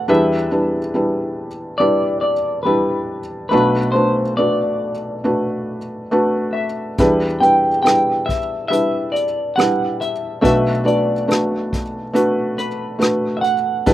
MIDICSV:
0, 0, Header, 1, 4, 480
1, 0, Start_track
1, 0, Key_signature, 1, "minor"
1, 0, Tempo, 860832
1, 52, Time_signature, 4, 2, 24, 8
1, 7771, End_track
2, 0, Start_track
2, 0, Title_t, "Clean electric guitar"
2, 0, Program_c, 0, 27
2, 55, Note_on_c, 0, 76, 80
2, 987, Note_off_c, 0, 76, 0
2, 991, Note_on_c, 0, 74, 85
2, 1226, Note_off_c, 0, 74, 0
2, 1233, Note_on_c, 0, 74, 70
2, 1462, Note_off_c, 0, 74, 0
2, 1466, Note_on_c, 0, 71, 70
2, 1940, Note_off_c, 0, 71, 0
2, 1947, Note_on_c, 0, 71, 78
2, 2177, Note_off_c, 0, 71, 0
2, 2184, Note_on_c, 0, 72, 68
2, 2434, Note_off_c, 0, 72, 0
2, 2437, Note_on_c, 0, 74, 74
2, 3640, Note_on_c, 0, 76, 74
2, 3685, Note_off_c, 0, 74, 0
2, 4129, Note_on_c, 0, 79, 80
2, 4146, Note_off_c, 0, 76, 0
2, 4357, Note_off_c, 0, 79, 0
2, 4363, Note_on_c, 0, 79, 78
2, 4602, Note_off_c, 0, 79, 0
2, 4605, Note_on_c, 0, 76, 74
2, 4835, Note_off_c, 0, 76, 0
2, 4842, Note_on_c, 0, 76, 86
2, 5085, Note_on_c, 0, 74, 71
2, 5099, Note_off_c, 0, 76, 0
2, 5316, Note_off_c, 0, 74, 0
2, 5329, Note_on_c, 0, 78, 79
2, 5579, Note_off_c, 0, 78, 0
2, 5581, Note_on_c, 0, 76, 76
2, 5804, Note_off_c, 0, 76, 0
2, 5811, Note_on_c, 0, 76, 86
2, 6038, Note_off_c, 0, 76, 0
2, 6057, Note_on_c, 0, 74, 73
2, 6992, Note_off_c, 0, 74, 0
2, 7016, Note_on_c, 0, 71, 72
2, 7433, Note_off_c, 0, 71, 0
2, 7454, Note_on_c, 0, 76, 61
2, 7477, Note_off_c, 0, 76, 0
2, 7479, Note_on_c, 0, 78, 76
2, 7771, Note_off_c, 0, 78, 0
2, 7771, End_track
3, 0, Start_track
3, 0, Title_t, "Felt piano"
3, 0, Program_c, 1, 0
3, 0, Control_c, 1, 64, 127
3, 0, Note_on_c, 1, 57, 59
3, 0, Note_on_c, 1, 62, 54
3, 0, Note_on_c, 1, 66, 52
3, 0, Note_on_c, 1, 71, 66
3, 45, Note_off_c, 1, 62, 0
3, 45, Note_on_c, 1, 62, 74
3, 47, Note_on_c, 1, 55, 80
3, 48, Note_on_c, 1, 52, 54
3, 50, Note_on_c, 1, 40, 54
3, 50, Note_on_c, 1, 64, 72
3, 52, Note_off_c, 1, 71, 0
3, 52, Note_on_c, 1, 71, 87
3, 59, Control_c, 1, 64, 0
3, 62, Note_off_c, 1, 57, 0
3, 63, Note_off_c, 1, 66, 0
3, 168, Control_c, 1, 64, 127
3, 196, Note_off_c, 1, 62, 0
3, 197, Note_off_c, 1, 55, 0
3, 199, Note_off_c, 1, 64, 0
3, 199, Note_off_c, 1, 71, 0
3, 283, Note_on_c, 1, 55, 55
3, 286, Note_on_c, 1, 62, 54
3, 288, Note_on_c, 1, 64, 50
3, 295, Note_on_c, 1, 71, 62
3, 435, Note_off_c, 1, 55, 0
3, 436, Note_off_c, 1, 62, 0
3, 437, Note_off_c, 1, 64, 0
3, 440, Note_off_c, 1, 71, 0
3, 524, Note_on_c, 1, 55, 60
3, 527, Note_on_c, 1, 62, 54
3, 529, Note_on_c, 1, 64, 51
3, 535, Note_on_c, 1, 71, 60
3, 821, Note_off_c, 1, 55, 0
3, 823, Note_off_c, 1, 62, 0
3, 824, Note_off_c, 1, 64, 0
3, 826, Note_off_c, 1, 71, 0
3, 1002, Note_on_c, 1, 55, 62
3, 1003, Note_on_c, 1, 62, 56
3, 1008, Note_on_c, 1, 71, 68
3, 1010, Note_on_c, 1, 64, 54
3, 1298, Note_off_c, 1, 55, 0
3, 1299, Note_off_c, 1, 62, 0
3, 1301, Note_off_c, 1, 71, 0
3, 1302, Note_off_c, 1, 64, 0
3, 1478, Note_on_c, 1, 55, 65
3, 1484, Note_on_c, 1, 62, 54
3, 1484, Note_on_c, 1, 64, 56
3, 1485, Note_on_c, 1, 71, 66
3, 1776, Note_off_c, 1, 55, 0
3, 1780, Note_off_c, 1, 62, 0
3, 1780, Note_off_c, 1, 64, 0
3, 1780, Note_off_c, 1, 71, 0
3, 1939, Note_off_c, 1, 52, 0
3, 1940, Note_off_c, 1, 40, 0
3, 1957, Note_on_c, 1, 57, 77
3, 1963, Note_on_c, 1, 62, 68
3, 1964, Note_on_c, 1, 47, 53
3, 1965, Note_on_c, 1, 35, 54
3, 1965, Note_on_c, 1, 66, 68
3, 1967, Note_on_c, 1, 71, 89
3, 1971, Control_c, 1, 64, 0
3, 2080, Control_c, 1, 64, 127
3, 2107, Note_off_c, 1, 57, 0
3, 2111, Note_off_c, 1, 62, 0
3, 2112, Note_off_c, 1, 66, 0
3, 2112, Note_off_c, 1, 71, 0
3, 2199, Note_on_c, 1, 57, 54
3, 2204, Note_on_c, 1, 62, 47
3, 2207, Note_on_c, 1, 66, 48
3, 2208, Note_on_c, 1, 71, 60
3, 2349, Note_off_c, 1, 57, 0
3, 2351, Note_off_c, 1, 62, 0
3, 2352, Note_off_c, 1, 66, 0
3, 2353, Note_off_c, 1, 71, 0
3, 2441, Note_on_c, 1, 57, 57
3, 2445, Note_on_c, 1, 66, 49
3, 2446, Note_on_c, 1, 62, 50
3, 2446, Note_on_c, 1, 71, 60
3, 2739, Note_off_c, 1, 57, 0
3, 2740, Note_off_c, 1, 66, 0
3, 2741, Note_off_c, 1, 62, 0
3, 2741, Note_off_c, 1, 71, 0
3, 2922, Note_on_c, 1, 62, 52
3, 2923, Note_on_c, 1, 57, 54
3, 2926, Note_on_c, 1, 66, 50
3, 2928, Note_on_c, 1, 71, 63
3, 3221, Note_off_c, 1, 57, 0
3, 3221, Note_off_c, 1, 62, 0
3, 3223, Note_off_c, 1, 66, 0
3, 3224, Note_off_c, 1, 71, 0
3, 3408, Note_on_c, 1, 57, 66
3, 3410, Note_on_c, 1, 62, 59
3, 3412, Note_on_c, 1, 66, 62
3, 3416, Note_on_c, 1, 71, 76
3, 3707, Note_off_c, 1, 57, 0
3, 3708, Note_off_c, 1, 62, 0
3, 3709, Note_off_c, 1, 66, 0
3, 3711, Note_off_c, 1, 71, 0
3, 3872, Note_off_c, 1, 47, 0
3, 3873, Note_off_c, 1, 35, 0
3, 3895, Note_on_c, 1, 55, 73
3, 3898, Note_on_c, 1, 52, 50
3, 3899, Note_on_c, 1, 62, 67
3, 3901, Control_c, 1, 64, 0
3, 3901, Note_on_c, 1, 40, 50
3, 3902, Note_on_c, 1, 64, 66
3, 3904, Note_on_c, 1, 71, 83
3, 4002, Control_c, 1, 64, 127
3, 4044, Note_off_c, 1, 55, 0
3, 4046, Note_off_c, 1, 62, 0
3, 4048, Note_off_c, 1, 64, 0
3, 4049, Note_off_c, 1, 71, 0
3, 4130, Note_on_c, 1, 55, 56
3, 4131, Note_on_c, 1, 62, 45
3, 4138, Note_on_c, 1, 64, 48
3, 4141, Note_on_c, 1, 71, 57
3, 4283, Note_off_c, 1, 55, 0
3, 4283, Note_off_c, 1, 62, 0
3, 4287, Note_off_c, 1, 64, 0
3, 4288, Note_off_c, 1, 71, 0
3, 4370, Note_on_c, 1, 55, 54
3, 4372, Note_on_c, 1, 62, 50
3, 4375, Note_on_c, 1, 64, 51
3, 4376, Note_on_c, 1, 71, 62
3, 4671, Note_off_c, 1, 55, 0
3, 4672, Note_off_c, 1, 62, 0
3, 4674, Note_off_c, 1, 64, 0
3, 4674, Note_off_c, 1, 71, 0
3, 4852, Note_on_c, 1, 55, 56
3, 4855, Note_on_c, 1, 62, 51
3, 4856, Note_on_c, 1, 64, 49
3, 4860, Note_on_c, 1, 71, 64
3, 5152, Note_off_c, 1, 55, 0
3, 5153, Note_off_c, 1, 62, 0
3, 5154, Note_off_c, 1, 64, 0
3, 5156, Note_off_c, 1, 71, 0
3, 5339, Note_on_c, 1, 55, 62
3, 5342, Note_on_c, 1, 62, 54
3, 5344, Note_on_c, 1, 64, 55
3, 5344, Note_on_c, 1, 71, 65
3, 5635, Note_off_c, 1, 55, 0
3, 5637, Note_off_c, 1, 62, 0
3, 5638, Note_off_c, 1, 64, 0
3, 5638, Note_off_c, 1, 71, 0
3, 5801, Note_off_c, 1, 52, 0
3, 5802, Note_off_c, 1, 40, 0
3, 5807, Note_on_c, 1, 57, 77
3, 5809, Note_on_c, 1, 47, 51
3, 5810, Note_on_c, 1, 35, 54
3, 5810, Note_on_c, 1, 62, 75
3, 5812, Note_on_c, 1, 66, 68
3, 5816, Note_on_c, 1, 71, 85
3, 5828, Control_c, 1, 64, 0
3, 5934, Control_c, 1, 64, 127
3, 5961, Note_off_c, 1, 57, 0
3, 5963, Note_off_c, 1, 62, 0
3, 5964, Note_off_c, 1, 66, 0
3, 5966, Note_off_c, 1, 71, 0
3, 6045, Note_on_c, 1, 57, 54
3, 6047, Note_on_c, 1, 62, 47
3, 6049, Note_on_c, 1, 71, 60
3, 6050, Note_on_c, 1, 66, 51
3, 6200, Note_off_c, 1, 57, 0
3, 6201, Note_off_c, 1, 62, 0
3, 6202, Note_off_c, 1, 66, 0
3, 6202, Note_off_c, 1, 71, 0
3, 6288, Note_on_c, 1, 57, 55
3, 6291, Note_on_c, 1, 62, 51
3, 6294, Note_on_c, 1, 71, 64
3, 6295, Note_on_c, 1, 66, 52
3, 6587, Note_off_c, 1, 57, 0
3, 6589, Note_off_c, 1, 62, 0
3, 6590, Note_off_c, 1, 71, 0
3, 6591, Note_off_c, 1, 66, 0
3, 6766, Note_on_c, 1, 57, 66
3, 6770, Note_on_c, 1, 62, 65
3, 6772, Note_on_c, 1, 66, 68
3, 6775, Note_on_c, 1, 71, 76
3, 7066, Note_off_c, 1, 57, 0
3, 7068, Note_off_c, 1, 62, 0
3, 7069, Note_off_c, 1, 66, 0
3, 7071, Note_off_c, 1, 71, 0
3, 7241, Note_on_c, 1, 57, 61
3, 7246, Note_on_c, 1, 62, 53
3, 7247, Note_on_c, 1, 66, 55
3, 7252, Note_on_c, 1, 71, 70
3, 7542, Note_off_c, 1, 57, 0
3, 7544, Note_off_c, 1, 62, 0
3, 7545, Note_off_c, 1, 66, 0
3, 7548, Note_off_c, 1, 71, 0
3, 7705, Note_off_c, 1, 47, 0
3, 7706, Note_off_c, 1, 35, 0
3, 7729, Note_on_c, 1, 62, 71
3, 7730, Note_on_c, 1, 55, 78
3, 7731, Note_on_c, 1, 40, 54
3, 7731, Note_on_c, 1, 52, 54
3, 7732, Note_on_c, 1, 64, 69
3, 7735, Note_on_c, 1, 71, 89
3, 7741, Control_c, 1, 64, 0
3, 7771, Note_off_c, 1, 40, 0
3, 7771, Note_off_c, 1, 52, 0
3, 7771, Note_off_c, 1, 55, 0
3, 7771, Note_off_c, 1, 62, 0
3, 7771, Note_off_c, 1, 64, 0
3, 7771, Note_off_c, 1, 71, 0
3, 7771, End_track
4, 0, Start_track
4, 0, Title_t, "Drums"
4, 3893, Note_on_c, 9, 42, 53
4, 3895, Note_on_c, 9, 36, 72
4, 3949, Note_off_c, 9, 42, 0
4, 3951, Note_off_c, 9, 36, 0
4, 4142, Note_on_c, 9, 42, 42
4, 4198, Note_off_c, 9, 42, 0
4, 4381, Note_on_c, 9, 42, 57
4, 4388, Note_on_c, 9, 37, 73
4, 4437, Note_off_c, 9, 42, 0
4, 4444, Note_off_c, 9, 37, 0
4, 4623, Note_on_c, 9, 36, 56
4, 4627, Note_on_c, 9, 42, 41
4, 4679, Note_off_c, 9, 36, 0
4, 4683, Note_off_c, 9, 42, 0
4, 4866, Note_on_c, 9, 42, 55
4, 4922, Note_off_c, 9, 42, 0
4, 5108, Note_on_c, 9, 42, 44
4, 5164, Note_off_c, 9, 42, 0
4, 5345, Note_on_c, 9, 42, 53
4, 5352, Note_on_c, 9, 37, 77
4, 5401, Note_off_c, 9, 42, 0
4, 5408, Note_off_c, 9, 37, 0
4, 5585, Note_on_c, 9, 42, 38
4, 5640, Note_off_c, 9, 42, 0
4, 5823, Note_on_c, 9, 36, 72
4, 5826, Note_on_c, 9, 42, 55
4, 5879, Note_off_c, 9, 36, 0
4, 5881, Note_off_c, 9, 42, 0
4, 6064, Note_on_c, 9, 42, 40
4, 6119, Note_off_c, 9, 42, 0
4, 6304, Note_on_c, 9, 42, 56
4, 6311, Note_on_c, 9, 37, 78
4, 6360, Note_off_c, 9, 42, 0
4, 6366, Note_off_c, 9, 37, 0
4, 6540, Note_on_c, 9, 36, 58
4, 6544, Note_on_c, 9, 42, 44
4, 6596, Note_off_c, 9, 36, 0
4, 6600, Note_off_c, 9, 42, 0
4, 6780, Note_on_c, 9, 42, 61
4, 6835, Note_off_c, 9, 42, 0
4, 7018, Note_on_c, 9, 42, 48
4, 7074, Note_off_c, 9, 42, 0
4, 7256, Note_on_c, 9, 42, 63
4, 7263, Note_on_c, 9, 37, 80
4, 7312, Note_off_c, 9, 42, 0
4, 7319, Note_off_c, 9, 37, 0
4, 7495, Note_on_c, 9, 42, 44
4, 7551, Note_off_c, 9, 42, 0
4, 7730, Note_on_c, 9, 42, 57
4, 7734, Note_on_c, 9, 36, 75
4, 7771, Note_off_c, 9, 36, 0
4, 7771, Note_off_c, 9, 42, 0
4, 7771, End_track
0, 0, End_of_file